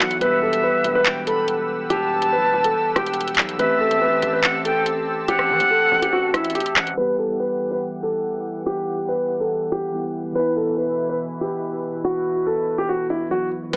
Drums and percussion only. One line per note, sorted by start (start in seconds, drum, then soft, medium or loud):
0.00 clap loud
0.11 closed hi-hat medium
0.21 closed hi-hat medium
0.53 closed hi-hat medium
0.84 closed hi-hat medium
1.06 clap loud
1.06 closed hi-hat medium
1.27 closed hi-hat medium
1.48 closed hi-hat medium
1.90 closed hi-hat medium
2.22 closed hi-hat medium
2.64 closed hi-hat medium
2.96 cross-stick medium
2.96 closed hi-hat medium
3.06 closed hi-hat medium
3.14 closed hi-hat medium
3.21 closed hi-hat medium
3.28 closed hi-hat medium
3.35 clap loud
3.35 closed hi-hat medium
3.42 closed hi-hat medium
3.49 closed hi-hat medium
3.59 closed hi-hat medium
3.91 closed hi-hat medium
4.22 closed hi-hat medium
4.44 clap loud
4.44 closed hi-hat medium
4.65 closed hi-hat medium
4.86 closed hi-hat medium
5.28 closed hi-hat medium
5.39 cross-stick medium
5.60 closed hi-hat medium
6.02 closed hi-hat medium
6.34 cross-stick medium
6.34 closed hi-hat medium
6.44 closed hi-hat medium
6.50 closed hi-hat medium
6.55 closed hi-hat medium
6.60 closed hi-hat medium
6.66 closed hi-hat medium
6.76 clap loud
6.87 closed hi-hat medium
13.73 closed hi-hat medium
13.73 crash medium